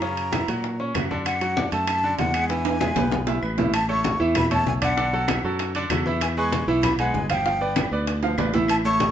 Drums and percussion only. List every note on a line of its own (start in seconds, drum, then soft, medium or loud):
0.02 high bongo medium
0.02 high conga soft
0.17 high conga soft
0.17 high timbale medium
0.32 high bongo medium
0.32 high conga loud
0.32 high timbale medium
0.32 low timbale medium
0.32 claves medium
0.48 high bongo soft
0.48 high conga soft
0.48 high timbale medium
0.64 high bongo medium
0.64 high conga soft
0.80 high bongo soft
0.80 high conga soft
0.95 high bongo soft
0.95 low bongo medium
0.95 high conga medium
0.95 high timbale medium
0.95 low timbale medium
0.95 claves medium
1.11 high bongo soft
1.11 high conga medium
1.26 high bongo medium
1.26 high conga soft
1.26 high timbale medium
1.26 claves medium
1.41 high conga soft
1.41 high timbale medium
1.57 high bongo medium
1.57 high conga loud
1.57 low timbale medium
1.72 high bongo soft
1.72 high conga soft
1.72 high timbale medium
1.87 high bongo medium
1.87 high conga soft
1.87 high timbale medium
1.87 claves medium
2.03 high bongo soft
2.03 high conga soft
2.19 high bongo soft
2.19 low bongo medium
2.19 high conga medium
2.19 high timbale medium
2.19 low timbale medium
2.34 high bongo soft
2.34 high conga soft
2.34 high timbale medium
2.34 claves medium
2.49 high bongo medium
2.49 high conga soft
2.49 high timbale medium
2.65 high conga soft
2.65 high timbale medium
2.81 high bongo medium
2.81 high conga medium
2.81 low timbale medium
2.81 claves medium
2.96 high bongo medium
2.96 high conga medium
2.96 low timbale medium
3.11 high bongo medium
3.11 high conga medium
3.11 low timbale medium
3.27 low bongo medium
3.27 low timbale loud
3.43 claves medium
3.58 low bongo medium
3.58 low conga medium
3.58 low timbale loud
3.74 high bongo medium
3.74 high conga soft
3.74 high timbale loud
3.74 claves medium
3.89 high bongo soft
3.89 high conga soft
4.04 high bongo medium
4.04 high conga medium
4.04 high timbale medium
4.35 high bongo medium
4.35 high conga soft
4.35 low conga medium
4.35 high timbale loud
4.35 claves medium
4.51 high bongo soft
4.51 high conga soft
4.51 low conga medium
4.51 high timbale medium
4.67 high bongo soft
4.67 low bongo medium
4.67 high conga medium
4.82 high bongo soft
4.82 high conga medium
4.82 high timbale loud
4.82 claves medium
4.98 high bongo medium
4.98 high conga soft
5.13 high bongo soft
5.13 high conga soft
5.28 high bongo medium
5.28 high conga loud
5.28 high timbale loud
5.28 claves medium
5.44 high conga soft
5.59 high bongo medium
5.59 high conga soft
5.59 high timbale medium
5.75 high bongo soft
5.75 high conga soft
5.75 high timbale medium
5.90 high bongo soft
5.90 low bongo medium
5.90 high conga medium
5.90 high timbale loud
5.90 claves medium
6.06 high bongo soft
6.06 high conga medium
6.21 high bongo medium
6.21 high conga soft
6.21 high timbale medium
6.21 claves medium
6.37 high bongo soft
6.37 high conga soft
6.52 high bongo medium
6.52 high conga loud
6.52 high timbale medium
6.83 high bongo medium
6.83 high conga soft
6.83 low conga medium
6.83 high timbale loud
6.83 claves medium
6.99 high bongo soft
6.99 high conga soft
6.99 high timbale medium
7.14 high bongo soft
7.14 low bongo medium
7.14 high conga medium
7.30 high bongo soft
7.30 high conga medium
7.30 high timbale medium
7.30 claves medium
7.46 high bongo medium
7.46 high conga soft
7.61 high bongo soft
7.61 high conga soft
7.76 high bongo medium
7.76 high conga loud
7.76 high timbale medium
7.76 claves medium
7.92 high conga soft
8.07 high bongo medium
8.07 high conga soft
8.07 high timbale medium
8.23 high bongo soft
8.23 high conga soft
8.23 high timbale medium
8.38 high bongo soft
8.38 low bongo medium
8.38 high conga medium
8.38 low timbale medium
8.38 claves medium
8.54 high bongo soft
8.54 high conga medium
8.54 low timbale medium
8.68 high bongo medium
8.68 high conga soft
8.68 high timbale loud
8.68 claves medium
8.84 high bongo soft
8.84 high conga soft
9.00 high bongo medium
9.00 high conga medium
9.00 high timbale medium